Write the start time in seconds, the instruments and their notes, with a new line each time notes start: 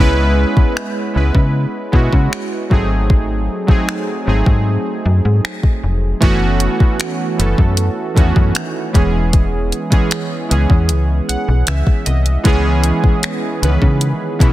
Already playing: synth keys G#3 B3
0.00 fm bass C#2, synth keys C#4 E4 B4
0.57 fm bass C#2, kick
0.77 finger snap
1.14 fm bass C#2, synth keys G#3 B3 C#4 E4 B4
1.35 fm bass C#3, kick
1.92 fm bass B2, synth keys G#3 B3 C#4 E4 F#4, kick
2.13 fm bass C#3, kick
2.33 finger snap
2.70 fm bass G#1, synth keys F#3 A3 C4 D#4 G#4, kick
3.10 kick
3.67 fm bass G#1, synth keys F#3 A3 C4 D#4 G#4, kick
3.89 finger snap
4.25 fm bass G#1, synth keys F#3 A3 C4 D#4 G#4
4.46 fm bass G#2, kick
5.05 fm bass F#2
5.25 fm bass G#2
5.45 finger snap
5.63 kick
5.84 fm bass F1
6.20 fm bass F#1, synth keys E3 A3 B3 C#4 F#4, kick, closed hi-hat
6.60 closed hi-hat
6.80 fm bass F#1, kick
7.00 finger snap, closed hi-hat
7.37 fm bass F#1, synth keys E3 A3 B3 C#4 A4, closed hi-hat
7.58 fm bass F#2, kick
7.77 closed hi-hat
8.14 fm bass E2, synth keys D#3 A3 B3 C#4 F#4, kick, closed hi-hat
8.21 synth keys E3
8.36 fm bass F#2, kick
8.55 finger snap, closed hi-hat
8.93 fm bass E1, synth keys E3 G#3 B3 C#4 G#4, kick, closed hi-hat
9.33 kick, closed hi-hat
9.72 closed hi-hat
9.90 fm bass C#2, synth keys E3 G#3 B3 C#4 G#4, kick, closed hi-hat
10.11 finger snap, closed hi-hat
10.49 fm bass C#2, synth keys E3 G#3 B3 C#4 G#4, closed hi-hat
10.70 fm bass E2, kick
10.89 fm bass C#2, closed hi-hat
11.29 fm bass B1, synth keys F#5, closed hi-hat
11.48 fm bass B1
11.67 fm bass C#2, synth keys E5, finger snap, closed hi-hat
11.87 kick
12.06 fm bass C2, synth keys D#5, closed hi-hat
12.26 closed hi-hat
12.44 fm bass C#2, synth keys E3 G#3 B3 C#4 G#4, kick, closed hi-hat
12.84 closed hi-hat
13.04 fm bass C#2, kick
13.23 finger snap, closed hi-hat
13.61 fm bass C#2, synth keys D#3 G#3 B3 C#4 B4, closed hi-hat
13.68 synth keys E3
13.82 fm bass C#3, kick
14.01 closed hi-hat
14.39 fm bass B2, synth keys E3 G#3 B3 C#4 E4, kick, closed hi-hat